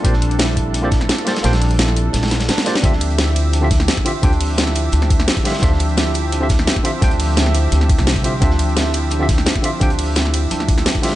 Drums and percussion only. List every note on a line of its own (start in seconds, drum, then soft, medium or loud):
0.05 kick loud
0.05 closed hi-hat medium
0.13 snare soft
0.22 closed hi-hat medium
0.31 closed hi-hat soft
0.39 snare loud
0.39 closed hi-hat loud
0.57 kick medium
0.57 closed hi-hat medium
0.74 closed hi-hat medium
0.91 kick loud
0.91 snare medium
0.91 closed hi-hat medium
1.01 snare medium
1.09 snare loud
1.09 closed hi-hat medium
1.18 snare soft
1.18 closed hi-hat soft
1.27 snare loud
1.27 closed hi-hat medium
1.36 snare loud
1.36 closed hi-hat medium
1.44 snare loud
1.44 closed hi-hat medium
1.44 closed hi-hat loud
1.53 snare loud
1.53 closed hi-hat medium
1.62 closed hi-hat medium
1.62 open hi-hat medium
1.71 closed hi-hat soft
1.79 snare loud
1.79 closed hi-hat loud
1.79 closed hi-hat medium
1.88 snare medium
1.96 closed hi-hat medium
1.96 open hi-hat medium
2.13 snare loud
2.13 closed hi-hat loud
2.13 closed hi-hat medium
2.23 snare loud
2.23 snare soft
2.23 closed hi-hat medium
2.28 snare medium
2.28 closed hi-hat medium
2.31 snare loud
2.31 snare medium
2.31 closed hi-hat medium
2.40 snare loud
2.40 closed hi-hat medium
2.40 closed hi-hat soft
2.48 snare medium
2.48 snare loud
2.48 closed hi-hat medium
2.48 closed hi-hat loud
2.57 snare loud
2.57 snare medium
2.57 closed hi-hat medium
2.57 closed hi-hat soft
2.66 snare loud
2.66 closed hi-hat medium
2.75 snare loud
2.75 snare medium
2.75 closed hi-hat medium
2.84 kick loud
2.84 closed hi-hat loud
2.84 closed hi-hat medium
2.93 snare soft
3.01 closed hi-hat medium
3.01 ride medium
3.10 closed hi-hat soft
3.18 snare loud
3.18 closed hi-hat medium
3.36 closed hi-hat medium
3.36 ride medium
3.53 closed hi-hat medium
3.71 kick loud
3.71 snare medium
3.71 closed hi-hat medium
3.71 ride medium
3.80 snare medium
3.88 snare loud
3.88 closed hi-hat loud
3.88 closed hi-hat medium
3.97 kick medium
3.97 snare soft
3.97 closed hi-hat soft
4.06 closed hi-hat medium
4.06 ride medium
4.23 kick loud
4.23 closed hi-hat medium
4.33 closed hi-hat soft
4.40 closed hi-hat medium
4.40 open hi-hat medium
4.40 ride medium
4.58 snare loud
4.58 closed hi-hat loud
4.58 closed hi-hat medium
4.67 snare medium
4.75 closed hi-hat medium
4.75 open hi-hat medium
4.75 ride medium
4.92 closed hi-hat medium
5.02 snare medium
5.10 kick loud
5.10 closed hi-hat medium
5.10 ride medium
5.19 snare medium
5.19 closed hi-hat soft
5.28 snare loud
5.28 closed hi-hat loud
5.28 closed hi-hat medium
5.37 kick medium
5.37 closed hi-hat soft
5.45 snare medium
5.45 closed hi-hat medium
5.45 ride medium
5.50 snare loud
5.50 closed hi-hat medium
5.54 snare medium
5.54 closed hi-hat medium
5.59 snare loud
5.59 closed hi-hat medium
5.63 kick loud
5.63 closed hi-hat medium
5.73 snare soft
5.80 closed hi-hat medium
5.80 ride medium
5.89 closed hi-hat soft
5.97 snare loud
5.97 closed hi-hat medium
6.14 closed hi-hat medium
6.14 ride medium
6.32 closed hi-hat medium
6.49 kick loud
6.49 snare medium
6.49 closed hi-hat medium
6.49 ride medium
6.59 snare medium
6.67 snare loud
6.67 closed hi-hat medium
6.76 kick medium
6.76 snare soft
6.76 closed hi-hat soft
6.85 closed hi-hat medium
6.85 ride medium
7.02 kick loud
7.02 closed hi-hat medium
7.11 closed hi-hat soft
7.20 closed hi-hat medium
7.20 open hi-hat medium
7.20 ride medium
7.37 snare loud
7.37 closed hi-hat medium
7.46 snare medium
7.55 closed hi-hat medium
7.55 open hi-hat medium
7.55 ride medium
7.72 closed hi-hat medium
7.81 snare soft
7.89 kick loud
7.89 closed hi-hat medium
7.89 ride medium
7.98 snare medium
7.98 closed hi-hat soft
8.07 snare loud
8.07 closed hi-hat medium
8.16 kick medium
8.16 closed hi-hat soft
8.24 closed hi-hat medium
8.24 ride medium
8.42 kick loud
8.42 closed hi-hat medium
8.50 snare soft
8.59 closed hi-hat medium
8.59 ride medium
8.69 closed hi-hat soft
8.77 snare loud
8.77 closed hi-hat medium
8.94 closed hi-hat medium
8.94 ride medium
9.11 closed hi-hat medium
9.29 kick loud
9.29 snare medium
9.29 closed hi-hat medium
9.29 ride medium
9.38 snare medium
9.46 snare loud
9.46 closed hi-hat medium
9.56 kick medium
9.56 snare soft
9.56 closed hi-hat soft
9.64 closed hi-hat medium
9.64 ride medium
9.81 kick loud
9.81 closed hi-hat medium
9.81 closed hi-hat loud
9.90 closed hi-hat soft
9.99 closed hi-hat medium
9.99 open hi-hat medium
9.99 ride medium
10.16 snare loud
10.16 closed hi-hat medium
10.25 snare medium
10.34 closed hi-hat medium
10.34 open hi-hat medium
10.34 ride medium
10.51 closed hi-hat medium
10.60 snare soft
10.68 kick loud
10.68 closed hi-hat medium
10.68 ride medium
10.78 snare medium
10.78 closed hi-hat soft
10.86 snare loud
10.86 closed hi-hat medium
10.95 kick medium
10.95 closed hi-hat soft
11.03 snare medium
11.03 closed hi-hat medium
11.03 ride medium
11.08 snare loud
11.08 closed hi-hat medium